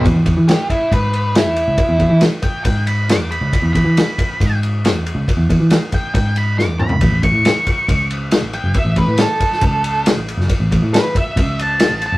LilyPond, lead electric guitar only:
\new Staff \with { instrumentName = "Lead electric guitar" } { \time 4/4 \key e \mixolydian \tempo 4 = 138 r4 g'8 e'8 b'4 e'4~ | e'4 r8 g''8 g''8 b''8 d'''8 b''8~ | b''8 b''2 r4. | r4. g''8 g''8 b''8 d'''8 b''8~ |
b''8 cis'''2 r4 g''8 | e''8 b'8 a'2 r4 | r4 b'8 e''4 a''4 a''8 | }